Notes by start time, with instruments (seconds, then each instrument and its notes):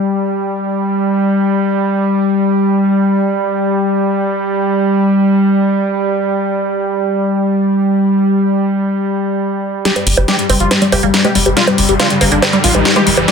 Already playing: ambient pad G3
9.85 acid bass G3, ambient pad G3, analog synth lead G4, snare, closed hi-hat, riser
9.96 analog synth lead G3, closed hi-hat, high bongo
10.07 analog synth bass G1, analog synth lead G3, open hi-hat
10.17 analog synth bass G1, analog synth lead G3, acid bass G4, closed hi-hat, high bongo
10.28 acid bass G3, analog synth lead G4, snare, closed hi-hat
10.39 analog synth lead G3, closed hi-hat
10.50 analog synth bass G1, analog synth lead G3, synth arpeggio sound C4, open hi-hat, high bongo
10.60 analog synth bass G1, analog synth lead F4, closed hi-hat
10.71 analog synth lead G3, snare, closed hi-hat, high bongo
10.82 acid bass G3, analog synth lead G3, closed hi-hat
10.92 analog synth bass G1, acid bass G#3, synth arpeggio sound A#3, analog synth lead G4, open hi-hat, high bongo
11.03 analog synth bass G1, analog synth lead G3, acid bass G#3, synth arpeggio sound A#3, closed hi-hat
11.14 analog synth lead G3, snare, closed hi-hat
11.25 acid bass G#3, analog synth lead G4, closed hi-hat, high bongo
11.35 analog synth bass G1, acid bass G3, analog synth lead G3, open hi-hat
11.46 analog synth bass G1, analog synth lead G3, acid bass G4, closed hi-hat, high bongo
11.57 acid bass G3, analog synth lead F4, snare, closed hi-hat
11.67 analog synth lead G3, closed hi-hat, high bongo
11.78 analog synth bass G1, analog synth lead G3, open hi-hat
11.89 analog synth bass G1, analog synth lead G3, acid bass G4, closed hi-hat
12.00 acid bass G3, analog synth lead F4, snare, closed hi-hat, high bongo
12.10 analog synth lead G3, closed hi-hat
12.21 analog synth bass G1, analog synth lead G3, synth arpeggio sound A#3, open hi-hat, high bongo
12.32 analog synth bass G1, synth arpeggio sound A#3, analog synth lead D4, closed hi-hat
12.42 analog synth lead G3, snare, closed hi-hat, high bongo
12.53 analog synth lead G3, acid bass G3, closed hi-hat
12.64 analog synth bass A#1, acid bass G#3, analog synth lead F4, open hi-hat
12.75 analog synth bass A#1, analog synth lead G3, acid bass G#3, closed hi-hat, high bongo
12.85 analog synth lead G3, snare, closed hi-hat
12.96 acid bass G#3, analog synth lead G4, closed hi-hat, high bongo
13.07 analog synth bass G1, analog synth lead G3, acid bass G3, open hi-hat
13.17 analog synth bass G1, analog synth lead G3, acid bass G4, closed hi-hat, high bongo
13.28 acid bass G3, analog synth lead G4, snare, closed hi-hat